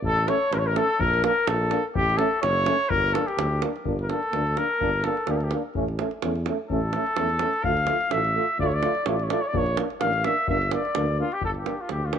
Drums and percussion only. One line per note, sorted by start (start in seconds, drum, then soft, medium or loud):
0.04 davul low medium
0.17 davul high soft
0.28 davul high medium
0.53 davul high medium
0.76 davul high medium
1.00 davul low medium
1.14 davul high soft
1.24 davul high medium
1.47 davul high medium
1.71 davul high medium
1.95 davul low medium
2.10 davul high soft
2.19 davul high medium
2.43 davul high medium
2.66 davul high medium
2.90 davul low medium
3.15 davul high medium
3.28 davul high soft
3.39 davul high medium
3.62 davul high medium
3.76 davul high soft
3.85 davul low medium
3.99 davul high soft
4.10 davul high medium
4.23 davul high soft
4.33 davul high medium
4.47 davul high soft
4.57 davul high medium
4.81 davul low medium
4.93 davul high soft
5.04 davul high medium
5.17 davul high soft
5.27 davul high medium
5.40 davul high soft
5.51 davul high medium
5.75 davul low medium
5.88 davul high soft
5.99 davul high medium
6.11 davul high soft
6.22 davul high medium
6.36 davul high soft
6.46 davul high medium
6.70 davul low medium
6.93 davul high medium
7.07 davul high soft
7.16 davul high medium
7.29 davul high soft
7.39 davul high medium
7.53 davul high soft
7.64 davul low medium
7.77 davul high soft
7.87 davul high medium
8.01 davul high soft
8.11 davul high medium
8.25 davul high soft
8.59 davul low medium
8.72 davul high soft
8.83 davul high medium
8.95 davul high soft
9.06 davul high medium
9.19 davul high soft
9.30 davul high medium
9.54 davul low medium
9.66 davul high soft
9.77 davul high medium
9.90 davul high soft
10.01 davul high medium
10.13 davul high soft
10.24 davul high medium
10.48 davul low medium
10.62 davul high soft
10.71 davul high medium
10.85 davul high soft
10.95 davul high medium
11.32 davul high soft
11.41 davul low medium
11.55 davul high soft
11.66 davul high medium
11.89 davul high medium
12.13 davul high medium